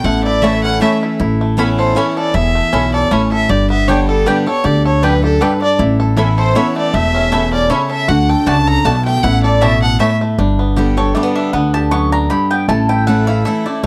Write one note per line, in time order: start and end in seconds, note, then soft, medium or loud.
0.00 0.79 A1 loud
0.00 0.44 A4 medium
0.04 0.78 A2 loud
0.04 0.60 A3 medium
0.04 0.23 F#5 medium
0.04 0.25 F#5 medium
0.24 0.78 E4 medium
0.24 0.44 D5 medium
0.24 0.45 D5 medium
0.42 0.79 E3 medium
0.42 0.80 A3 medium
0.42 0.53 A3 medium
0.42 0.80 C#4 medium
0.42 0.53 E4 loud
0.42 0.80 E4 loud
0.42 0.81 A4 medium
0.42 0.53 C#5 medium
0.42 0.63 E5 loud
0.42 0.63 E5 medium
0.42 0.53 A5 loud
0.63 1.17 C#4 medium
0.63 0.80 F#5 loud
0.63 0.80 F#5 medium
0.80 1.17 E3 medium
0.80 0.91 A3 medium
0.80 1.18 A3 medium
0.80 1.18 C#4 medium
0.80 0.91 E4 medium
0.80 1.19 E4 medium
0.80 1.20 A4 medium
0.80 0.91 C#5 loud
0.80 0.94 E5 medium
0.80 1.02 E5 medium
0.80 0.91 A5 medium
1.03 1.19 E4 medium
1.20 1.94 A1 loud
1.20 1.93 A2 loud
1.20 1.75 E4 medium
1.41 1.93 A3 medium
1.57 1.94 E3 medium
1.57 1.95 B3 medium
1.57 1.68 C#4 medium
1.57 1.95 C#4 medium
1.57 1.95 E4 medium
1.57 1.68 A4 medium
1.57 1.68 E5 medium
1.57 1.68 B5 loud
1.79 2.16 A4 medium
1.79 1.99 C5 loud
1.95 2.32 E3 medium
1.95 2.33 B3 medium
1.95 2.06 C#4 loud
1.95 2.51 C#4 medium
1.95 2.33 C#4 medium
1.95 2.33 E4 medium
1.95 2.06 A4 medium
1.95 2.18 C#5 medium
1.95 2.06 E5 loud
1.95 2.07 B5 loud
2.17 2.70 A4 medium
2.17 2.36 D5 loud
2.34 2.59 E1 medium
2.34 3.08 E2 loud
2.34 2.90 E4 medium
2.34 2.94 E5 loud
2.55 3.08 A3 medium
2.73 3.06 B1 medium
2.73 3.10 B2 medium
2.73 2.83 C#4 loud
2.73 3.10 C#4 medium
2.73 2.83 A4 medium
2.73 2.83 E5 loud
2.73 2.83 B5 medium
2.94 3.31 A4 medium
2.94 3.14 D5 loud
3.11 3.44 A1 medium
3.11 3.48 A2 medium
3.11 3.21 C#4 medium
3.11 3.50 C#4 medium
3.11 3.21 A4 medium
3.11 3.32 C#5 medium
3.11 3.21 E5 medium
3.11 3.21 B5 loud
3.32 3.50 A4 medium
3.32 3.51 E5 loud
3.49 4.24 G1 loud
3.49 4.23 G2 loud
3.49 4.04 G4 medium
3.49 3.70 D5 loud
3.70 4.50 B3 medium
3.70 3.89 E5 loud
3.88 4.24 D3 medium
3.88 4.25 G3 medium
3.88 3.98 B3 medium
3.88 4.25 B3 loud
3.88 4.25 D4 medium
3.88 3.98 G4 loud
3.88 4.26 G4 medium
3.88 4.08 C#5 medium
3.88 3.98 D5 loud
3.88 3.98 G5 loud
4.08 4.29 A4 loud
4.08 4.46 A4 medium
4.26 4.46 D3 medium
4.26 4.46 G3 loud
4.26 4.36 B3 medium
4.26 4.47 B3 medium
4.26 4.81 D4 medium
4.26 4.36 G4 medium
4.26 4.45 G4 medium
4.26 4.47 B4 medium
4.26 4.37 D5 loud
4.26 4.37 G5 loud
4.46 4.65 B3 soft
4.46 4.64 G4 medium
4.46 4.84 A4 medium
4.46 4.67 C#5 medium
4.64 5.39 D2 medium
4.64 5.37 D3 medium
4.64 5.19 G4 medium
4.64 4.86 D5 medium
4.86 5.38 A4 medium
4.86 5.05 C#5 medium
5.03 5.40 F#2 medium
5.03 5.12 B3 medium
5.03 5.58 D4 medium
5.03 5.13 G4 medium
5.03 5.23 B4 medium
5.03 5.13 D5 loud
5.03 5.13 G5 loud
5.24 5.76 G4 medium
5.24 5.43 A4 medium
5.41 5.78 G2 medium
5.41 5.51 B3 medium
5.41 5.51 G4 medium
5.41 5.79 A4 medium
5.41 5.61 B4 medium
5.41 5.62 B4 medium
5.41 5.51 D5 medium
5.41 5.51 G5 loud
5.62 5.80 D4 medium
5.62 5.78 D5 loud
5.62 5.79 D5 medium
5.79 6.53 A1 loud
5.79 6.52 A2 medium
5.79 6.16 E4 medium
6.00 6.38 A4 medium
6.17 6.54 E3 medium
6.17 6.54 B3 medium
6.17 6.27 C#4 medium
6.17 6.54 C#4 medium
6.17 6.55 E4 medium
6.17 6.55 E4 loud
6.17 6.27 A4 medium
6.17 6.28 E5 medium
6.17 6.28 B5 medium
6.38 7.78 A4 medium
6.38 6.57 C5 loud
6.38 6.59 C5 medium
6.55 6.92 E3 medium
6.55 6.93 B3 medium
6.55 6.65 C#4 medium
6.55 6.93 C#4 medium
6.55 7.11 E4 medium
6.55 6.93 E4 loud
6.55 6.65 A4 loud
6.55 6.77 C#5 medium
6.55 6.66 E5 medium
6.55 6.66 B5 loud
6.76 6.94 A3 medium
6.76 6.96 D5 loud
6.76 6.96 D5 medium
6.94 7.68 E1 medium
6.94 7.67 E2 loud
6.94 7.32 A3 medium
6.94 7.52 E5 loud
6.94 7.53 E5 medium
7.15 7.51 C#4 medium
7.32 7.69 B2 medium
7.32 8.72 A3 medium
7.32 7.42 C#4 loud
7.32 7.42 A4 loud
7.32 7.42 E5 loud
7.32 7.42 B5 loud
7.52 8.05 C#4 medium
7.52 7.71 D5 loud
7.52 7.74 D5 medium
7.70 8.07 C#3 medium
7.70 7.80 C#4 loud
7.70 8.08 E4 medium
7.70 7.80 A4 loud
7.70 7.90 C#5 medium
7.70 7.91 C#5 medium
7.70 7.80 E5 medium
7.70 7.80 B5 loud
7.91 8.29 A4 medium
7.91 8.10 E5 loud
7.91 8.11 E5 medium
8.08 8.33 D2 medium
8.08 8.82 D3 loud
8.08 8.46 F#4 medium
8.08 8.31 F#5 medium
8.08 8.30 F#5 medium
8.29 8.66 A4 medium
8.29 8.49 G5 medium
8.46 8.79 C#2 medium
8.46 8.84 C#3 medium
8.46 8.56 A3 medium
8.46 8.57 F#4 loud
8.46 8.84 F#4 medium
8.46 8.57 D5 loud
8.46 8.57 A5 loud
8.46 8.69 A5 loud
8.46 8.69 A5 medium
8.68 9.20 A4 medium
8.68 8.87 A#5 loud
8.68 8.86 A#5 medium
8.85 9.18 B1 loud
8.85 9.22 B2 medium
8.85 8.95 A3 loud
8.85 8.95 F#4 medium
8.85 9.24 F#4 medium
8.85 8.95 D5 medium
8.85 9.05 A5 medium
8.85 8.95 A5 loud
8.85 9.04 A5 medium
9.05 9.24 A3 medium
9.05 9.24 G5 loud
9.05 9.25 G5 medium
9.23 9.98 A1 loud
9.23 9.97 A2 loud
9.23 9.61 E4 medium
9.23 9.42 F#5 loud
9.23 9.44 F#5 medium
9.43 9.81 A4 medium
9.43 9.63 D5 medium
9.43 9.65 D5 medium
9.61 9.98 B2 medium
9.61 9.71 A3 medium
9.61 9.72 E4 loud
9.61 9.99 E4 medium
9.61 9.72 C#5 loud
9.61 9.82 E5 loud
9.61 9.83 E5 medium
9.61 9.72 A5 loud
9.82 10.35 A4 medium
9.82 9.99 F#5 loud
9.82 10.00 F#5 medium
9.99 10.37 A2 medium
9.99 10.09 A3 loud
9.99 10.10 E4 medium
9.99 10.39 E4 medium
9.99 10.10 C#5 medium
9.99 10.12 E5 loud
9.99 10.20 E5 medium
9.99 10.10 A5 loud
10.21 10.39 A3 medium
10.38 11.13 G1 medium
10.38 11.12 G2 medium
10.38 10.93 D4 medium
10.59 11.12 B3 medium
10.76 10.97 D3 medium
10.76 10.97 G3 loud
10.76 10.97 B3 medium
10.76 11.32 G4 medium
10.76 10.96 G4 medium
10.97 11.15 B3 soft
10.97 11.14 G4 medium
10.97 11.50 A4 medium
10.97 11.15 C#5 medium
11.15 11.52 D3 medium
11.15 11.52 G3 medium
11.15 11.23 A3 medium
11.15 11.52 B3 loud
11.15 11.53 G4 loud
11.15 11.35 D5 medium
11.23 11.52 B3 medium
11.36 11.88 D4 medium
11.36 11.53 E5 medium
11.53 12.28 D2 medium
11.53 12.27 D3 medium
11.53 11.90 B3 medium
11.53 11.73 F#5 medium
11.74 12.27 G4 medium
11.74 11.91 A5 loud
11.91 12.28 F#2 medium
11.91 12.47 B3 medium
11.91 12.12 C#6 loud
12.12 12.65 D4 medium
12.12 12.29 A#5 medium
12.30 12.67 G2 medium
12.30 12.69 G4 medium
12.30 12.50 B5 loud
12.51 12.68 B3 medium
12.51 12.68 G5 medium
12.68 13.43 A1 loud
12.68 13.42 A2 loud
12.68 13.23 A3 medium
12.68 12.89 A5 loud
12.89 13.28 E4 medium
12.89 13.06 G5 medium
13.07 13.44 E3 medium
13.07 13.44 A3 medium
13.07 13.44 C#4 medium
13.07 13.45 E4 loud
13.07 13.44 A4 medium
13.07 13.27 F#5 medium
13.27 13.86 E4 medium
13.27 13.45 F5 loud
13.45 13.65 E3 medium
13.45 13.66 A3 medium
13.45 13.66 C#4 medium
13.45 13.64 E4 loud
13.45 13.86 A4 medium
13.45 13.65 E5 medium
13.65 13.83 A3 medium
13.65 13.84 C#4 soft
13.65 13.83 E4 medium
13.65 13.83 D5 medium
13.83 13.86 E1 medium
13.83 13.86 C#5 medium